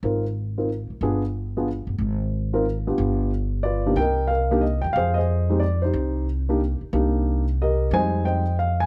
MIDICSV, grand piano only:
0, 0, Header, 1, 2, 480
1, 0, Start_track
1, 0, Key_signature, -3, "minor"
1, 0, Tempo, 328407
1, 53, Time_signature, 3, 2, 24, 8
1, 12951, End_track
2, 0, Start_track
2, 0, Title_t, "Grand piano"
2, 0, Program_c, 0, 0
2, 51, Note_on_c, 0, 60, 41
2, 57, Note_on_c, 0, 63, 40
2, 61, Note_on_c, 0, 65, 40
2, 65, Note_on_c, 0, 70, 49
2, 330, Note_off_c, 0, 60, 0
2, 333, Note_off_c, 0, 63, 0
2, 335, Note_off_c, 0, 65, 0
2, 337, Note_off_c, 0, 70, 0
2, 843, Note_on_c, 0, 65, 40
2, 846, Note_on_c, 0, 70, 46
2, 848, Note_on_c, 0, 60, 41
2, 848, Note_on_c, 0, 63, 39
2, 996, Note_off_c, 0, 65, 0
2, 998, Note_off_c, 0, 70, 0
2, 999, Note_off_c, 0, 60, 0
2, 999, Note_off_c, 0, 63, 0
2, 1498, Note_on_c, 0, 62, 50
2, 1501, Note_on_c, 0, 59, 53
2, 1502, Note_on_c, 0, 68, 62
2, 1505, Note_on_c, 0, 65, 46
2, 1774, Note_off_c, 0, 62, 0
2, 1775, Note_off_c, 0, 59, 0
2, 1775, Note_off_c, 0, 68, 0
2, 1777, Note_off_c, 0, 65, 0
2, 2293, Note_on_c, 0, 59, 57
2, 2299, Note_on_c, 0, 62, 50
2, 2301, Note_on_c, 0, 68, 54
2, 2302, Note_on_c, 0, 65, 52
2, 2441, Note_off_c, 0, 59, 0
2, 2444, Note_off_c, 0, 62, 0
2, 2445, Note_off_c, 0, 68, 0
2, 2446, Note_off_c, 0, 65, 0
2, 3704, Note_on_c, 0, 65, 52
2, 3707, Note_on_c, 0, 63, 51
2, 3708, Note_on_c, 0, 60, 52
2, 3713, Note_on_c, 0, 70, 63
2, 3867, Note_off_c, 0, 65, 0
2, 3868, Note_off_c, 0, 63, 0
2, 3869, Note_off_c, 0, 60, 0
2, 3871, Note_off_c, 0, 70, 0
2, 4196, Note_on_c, 0, 59, 52
2, 4202, Note_on_c, 0, 62, 47
2, 4202, Note_on_c, 0, 67, 56
2, 4210, Note_on_c, 0, 65, 47
2, 4816, Note_off_c, 0, 59, 0
2, 4819, Note_off_c, 0, 62, 0
2, 4819, Note_off_c, 0, 67, 0
2, 4823, Note_off_c, 0, 65, 0
2, 5308, Note_on_c, 0, 74, 68
2, 5333, Note_on_c, 0, 65, 48
2, 5336, Note_on_c, 0, 71, 47
2, 5646, Note_on_c, 0, 48, 52
2, 5646, Note_on_c, 0, 62, 51
2, 5652, Note_on_c, 0, 63, 54
2, 5653, Note_on_c, 0, 58, 49
2, 5655, Note_on_c, 0, 67, 61
2, 5766, Note_off_c, 0, 74, 0
2, 5779, Note_off_c, 0, 65, 0
2, 5781, Note_off_c, 0, 71, 0
2, 5797, Note_on_c, 0, 79, 84
2, 5798, Note_off_c, 0, 48, 0
2, 5798, Note_off_c, 0, 62, 0
2, 5801, Note_off_c, 0, 58, 0
2, 5801, Note_off_c, 0, 63, 0
2, 5803, Note_off_c, 0, 67, 0
2, 5846, Note_on_c, 0, 70, 64
2, 5858, Note_on_c, 0, 75, 57
2, 6249, Note_on_c, 0, 77, 76
2, 6251, Note_off_c, 0, 79, 0
2, 6275, Note_off_c, 0, 70, 0
2, 6297, Note_on_c, 0, 70, 55
2, 6571, Note_off_c, 0, 75, 0
2, 6594, Note_on_c, 0, 58, 69
2, 6602, Note_on_c, 0, 62, 57
2, 6605, Note_on_c, 0, 63, 61
2, 6607, Note_on_c, 0, 67, 74
2, 6741, Note_on_c, 0, 75, 72
2, 6752, Note_off_c, 0, 58, 0
2, 6756, Note_off_c, 0, 62, 0
2, 6758, Note_off_c, 0, 63, 0
2, 6759, Note_off_c, 0, 67, 0
2, 6766, Note_off_c, 0, 77, 0
2, 7030, Note_off_c, 0, 70, 0
2, 7039, Note_on_c, 0, 79, 73
2, 7044, Note_off_c, 0, 75, 0
2, 7205, Note_on_c, 0, 77, 87
2, 7238, Note_off_c, 0, 79, 0
2, 7268, Note_on_c, 0, 72, 63
2, 7271, Note_on_c, 0, 68, 58
2, 7514, Note_on_c, 0, 75, 75
2, 7548, Note_off_c, 0, 72, 0
2, 7548, Note_off_c, 0, 77, 0
2, 7561, Note_off_c, 0, 68, 0
2, 7569, Note_on_c, 0, 72, 61
2, 7583, Note_on_c, 0, 68, 59
2, 8035, Note_on_c, 0, 63, 53
2, 8039, Note_on_c, 0, 56, 50
2, 8045, Note_on_c, 0, 60, 48
2, 8046, Note_on_c, 0, 67, 55
2, 8172, Note_off_c, 0, 72, 0
2, 8179, Note_off_c, 0, 68, 0
2, 8180, Note_on_c, 0, 74, 65
2, 8193, Note_off_c, 0, 63, 0
2, 8195, Note_off_c, 0, 56, 0
2, 8198, Note_off_c, 0, 60, 0
2, 8198, Note_off_c, 0, 67, 0
2, 8210, Note_off_c, 0, 75, 0
2, 8507, Note_on_c, 0, 72, 65
2, 8516, Note_off_c, 0, 74, 0
2, 8546, Note_on_c, 0, 63, 50
2, 8555, Note_on_c, 0, 67, 47
2, 9120, Note_off_c, 0, 72, 0
2, 9141, Note_off_c, 0, 63, 0
2, 9146, Note_off_c, 0, 67, 0
2, 9485, Note_on_c, 0, 58, 52
2, 9488, Note_on_c, 0, 62, 49
2, 9493, Note_on_c, 0, 63, 51
2, 9498, Note_on_c, 0, 67, 61
2, 9638, Note_off_c, 0, 58, 0
2, 9640, Note_off_c, 0, 62, 0
2, 9642, Note_off_c, 0, 63, 0
2, 9645, Note_off_c, 0, 67, 0
2, 10130, Note_on_c, 0, 58, 55
2, 10138, Note_on_c, 0, 63, 53
2, 10139, Note_on_c, 0, 62, 51
2, 10144, Note_on_c, 0, 67, 57
2, 10860, Note_off_c, 0, 58, 0
2, 10864, Note_off_c, 0, 63, 0
2, 10865, Note_off_c, 0, 62, 0
2, 10867, Note_off_c, 0, 67, 0
2, 11134, Note_on_c, 0, 75, 75
2, 11135, Note_on_c, 0, 67, 50
2, 11146, Note_on_c, 0, 70, 51
2, 11563, Note_off_c, 0, 67, 0
2, 11569, Note_off_c, 0, 70, 0
2, 11592, Note_on_c, 0, 55, 57
2, 11592, Note_on_c, 0, 56, 51
2, 11593, Note_on_c, 0, 60, 48
2, 11595, Note_on_c, 0, 63, 47
2, 11600, Note_on_c, 0, 80, 91
2, 11608, Note_off_c, 0, 75, 0
2, 11609, Note_on_c, 0, 72, 65
2, 11633, Note_on_c, 0, 75, 65
2, 12035, Note_off_c, 0, 80, 0
2, 12045, Note_off_c, 0, 75, 0
2, 12056, Note_off_c, 0, 72, 0
2, 12062, Note_on_c, 0, 79, 75
2, 12067, Note_on_c, 0, 75, 60
2, 12078, Note_on_c, 0, 72, 54
2, 12311, Note_off_c, 0, 56, 0
2, 12312, Note_off_c, 0, 55, 0
2, 12312, Note_off_c, 0, 60, 0
2, 12313, Note_off_c, 0, 63, 0
2, 12506, Note_off_c, 0, 79, 0
2, 12555, Note_on_c, 0, 77, 76
2, 12796, Note_off_c, 0, 75, 0
2, 12802, Note_off_c, 0, 72, 0
2, 12834, Note_off_c, 0, 77, 0
2, 12868, Note_on_c, 0, 80, 85
2, 12951, Note_off_c, 0, 80, 0
2, 12951, End_track
0, 0, End_of_file